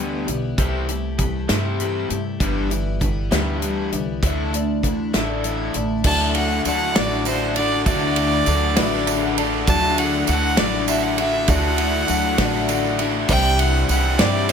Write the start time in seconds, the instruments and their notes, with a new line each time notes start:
Already playing: upright bass D2, overdriven electric guitar G2 D3 G3, twelve-string acoustic guitar E3
0.00 twelve-string acoustic guitar G3 B3 E4
0.27 upright bass B1, overdriven electric guitar G2 D3, twelve-string acoustic guitar E3 G3 B3 E4, closed hi-hat
0.58 upright bass C2, overdriven electric guitar C3 G3 C4, twelve-string acoustic guitar C3 E3 A3 E4 G4, kick, closed hi-hat
0.88 overdriven electric guitar C3 G3, twelve-string acoustic guitar A3 E4 G4, closed hi-hat
1.18 overdriven electric guitar C3 G3, twelve-string acoustic guitar E3 A3 E4 G4, kick, closed hi-hat
1.49 upright bass G2, overdriven electric guitar C3 G3 C4, twelve-string acoustic guitar C3 E3 A3 E4 G4, snare, closed hi-hat
1.80 twelve-string acoustic guitar E3 A3 E4 G4, closed hi-hat
2.10 upright bass G2, overdriven electric guitar C3 G3, twelve-string acoustic guitar A3 E4 G4, closed hi-hat
2.40 upright bass G1, overdriven electric guitar G2 D3 G3, twelve-string acoustic guitar G2 D3 E3 G3 B3 E4, kick, closed hi-hat
2.70 overdriven electric guitar G2 D3, twelve-string acoustic guitar E3 G3 B3 E4, closed hi-hat
3.00 overdriven electric guitar G2 D3, twelve-string acoustic guitar E3 G3 B3 E4, kick, closed hi-hat
3.31 upright bass D2, overdriven electric guitar G2 D3 G3, twelve-string acoustic guitar G2 D3 E3 G3 B3 E4, snare, closed hi-hat
3.62 twelve-string acoustic guitar E3 G3 B3 E4, closed hi-hat
3.92 upright bass C2, overdriven electric guitar G2 D3, twelve-string acoustic guitar E3 G3 B3 E4, closed hi-hat
4.22 upright bass D2, twelve-string acoustic guitar D3 E3 A3 D4 E4, overdriven electric guitar D3 A3 E4, kick, closed hi-hat
4.52 overdriven electric guitar D3 A3, twelve-string acoustic guitar A3 D4 E4, closed hi-hat
4.83 overdriven electric guitar D3 A3, twelve-string acoustic guitar E3 A3 D4 E4, kick, closed hi-hat
5.13 upright bass A1, overdriven electric guitar D3 A3 E4, twelve-string acoustic guitar D3 E3 A3 D4 E4, snare, closed hi-hat
5.44 twelve-string acoustic guitar E3 A3 D4 E4, closed hi-hat
5.73 upright bass A1, overdriven electric guitar D3 A3, twelve-string acoustic guitar A3 D4 E4, closed hi-hat
6.04 upright bass D2, overdriven electric guitar D3 A3 D4 F#4, twelve-string acoustic guitar D3 F#3 A3 D4 E4, grand piano E4 F#4 D5, fiddle A5, kick, crash, tambourine
6.35 overdriven electric guitar A3 D4 F#4, fiddle F#5, ride
6.50 tambourine
6.64 upright bass D2, overdriven electric guitar D3 A3 D4 F#4, twelve-string acoustic guitar F#3 A3 D4 E4, fiddle F#5, ride, tambourine
6.95 upright bass A1, twelve-string acoustic guitar D3 F#3 A3 D4 E4, overdriven electric guitar A3 D4 F#4, grand piano E4 F#4 D5, fiddle D5, snare, ride, tambourine
7.25 overdriven electric guitar D3 A3 D4 F#4, fiddle C5, ride, tambourine
7.56 overdriven electric guitar A3 D4 F#4, twelve-string acoustic guitar A3 D4 E4, fiddle D5, ride
7.85 upright bass D2, overdriven electric guitar D3 A3 D4 F#4, twelve-string acoustic guitar D3 F#3 A3 D4 E4, grand piano E4 F#4 D5, fiddle D5, kick, ride, tambourine
8.16 overdriven electric guitar A3 D4 F#4, ride
8.32 tambourine
8.46 upright bass D2, overdriven electric guitar D3 A3 D4 F#4, twelve-string acoustic guitar F#3 A3 D4 E4, ride, tambourine
8.76 upright bass A1, twelve-string acoustic guitar D3 F#3 A3 D4 E4, overdriven electric guitar A3 D4 F#4, grand piano E4 F#4 B4, snare, ride, tambourine
9.06 overdriven electric guitar D3 A3 D4 F#4, grand piano E5, ride, tambourine
9.22 grand piano F#5
9.37 twelve-string acoustic guitar A3 D4 E4, overdriven electric guitar A3 D4 F#4, grand piano A5, ride
9.66 upright bass D2, overdriven electric guitar D3 A3 D4 F#4, twelve-string acoustic guitar D3 F#3 A3 D4 E4, grand piano E4 F#4 D5, fiddle A5, kick, ride, tambourine
9.97 overdriven electric guitar A3 D4 F#4, fiddle F#5, ride
10.13 tambourine
10.26 upright bass D2, overdriven electric guitar D3 A3 D4 F#4, twelve-string acoustic guitar F#3 A3 D4 E4, fiddle F#5, ride, tambourine
10.56 upright bass A1, twelve-string acoustic guitar D3 F#3 A3 D4 E4, overdriven electric guitar A3 D4 F#4, grand piano E4 F#4 D5, fiddle D5, snare, ride, tambourine
10.88 overdriven electric guitar D3 A3 D4 F#4, fiddle E5, ride, tambourine
11.03 fiddle F#5
11.18 overdriven electric guitar A3 D4 F#4, twelve-string acoustic guitar A3 D4 E4, fiddle E5, ride
11.48 upright bass D2, overdriven electric guitar D3 A3 D4 F#4, twelve-string acoustic guitar D3 F#3 A3 D4 E4, grand piano E4 F#4 D5, fiddle F#5, kick, ride, tambourine
11.78 overdriven electric guitar A3 D4 F#4, ride
11.94 tambourine
12.08 upright bass D2, overdriven electric guitar D3 A3 D4 F#4, twelve-string acoustic guitar F#3 A3 D4 E4, ride, tambourine
12.38 upright bass A1, twelve-string acoustic guitar D3 F#3 A3 D4 E4, overdriven electric guitar A3 D4 F#4, grand piano E4 F#4 D5, kick, snare, ride
12.53 tambourine
12.69 overdriven electric guitar D3 A3 D4 F#4, ride, tambourine
12.84 tambourine
12.99 twelve-string acoustic guitar A3 D4 E4, overdriven electric guitar A3 D4 F#4, ride
13.28 upright bass C2, twelve-string acoustic guitar C3 G3 C4 D4 E4, overdriven electric guitar C3 E3 G3 C4 G4, grand piano E4 C5 D5, fiddle G5, kick, crash, tambourine
13.59 overdriven electric guitar G3 C4 G4, fiddle F#5, ride
13.74 tambourine
13.89 upright bass C2, overdriven electric guitar E3 G3 C4 G4, twelve-string acoustic guitar G3 C4 D4 E4, fiddle F#5, ride, tambourine
14.18 upright bass G2, twelve-string acoustic guitar C3 G3 C4 D4 E4, overdriven electric guitar G3 C4 G4, grand piano E4 C5 D5, fiddle D5, snare, ride, tambourine
14.49 overdriven electric guitar E3, ride